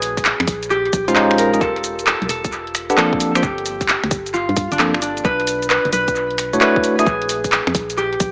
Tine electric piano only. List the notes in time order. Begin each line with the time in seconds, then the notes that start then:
1.08 G#3 C#4 D#4 F4 C5
1.16 G#3 C#4 D#4 F4 C5
1.53 G#3 C#4 D#4 F4 D#5
2.90 D4 G4 A4 B4 F#5
2.97 F3 A#3 C4 D4 A4
3.35 F3 A#3 C4 D4 C5
4.79 F3 A#3 C4 D4 A4
6.53 A3 D4 E4 F#4 C#5
6.61 A3 D4 E4 F#4 C#5
6.99 A3 D4 E4 F#4 E5